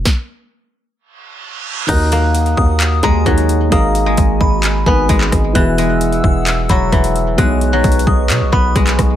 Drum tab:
CC |------------------------------------------------|x-----------------------------------------------|------------------------------------------------|------------------------------------------------|
HH |------------------------------------------------|x-----x-----x--x--------x-----x-----x--x--x-----|x-----x-----x-----------x-----------x-----x-----|x-----x-----x--x--------x-----x-----x--x--x-----|
CP |------------------------------------------------|------------------------x-----------------------|------------------------x--------------x--------|------------------------x-----------------------|
SD |o-----------------------------------------------|------------------------------------------------|------------------------------------------r-----|------------------------------------------------|
BD |o-----------------------------------------------|o-----------------o-----------o-----o-----------|o-----------o-----o-----------o-----o-----o-----|o-----------------o-----------o-----o-----------|

CC |------------------------------------------------|
HH |x-----x-----x-x-x-------x-----------x--x--x-----|
CP |------------------------x--------------x--------|
SD |------------------------------------------r-----|
BD |o-----------o-----o-----------o-----o-----o-----|